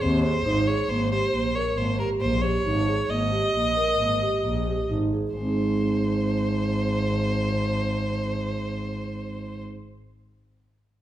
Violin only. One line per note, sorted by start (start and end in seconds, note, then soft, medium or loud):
0.01 0.23 C5 medium
0.23 0.69 C5 medium
0.67 0.90 C#5 medium
0.89 1.11 C5 medium
1.11 1.57 C5 medium
1.55 1.79 C#5 medium
1.77 1.99 C5 medium
1.99 2.09 A#4 medium
2.21 2.43 C5 medium
2.42 3.11 C#5 medium
3.10 4.90 D#5 medium
5.36 9.63 C5 medium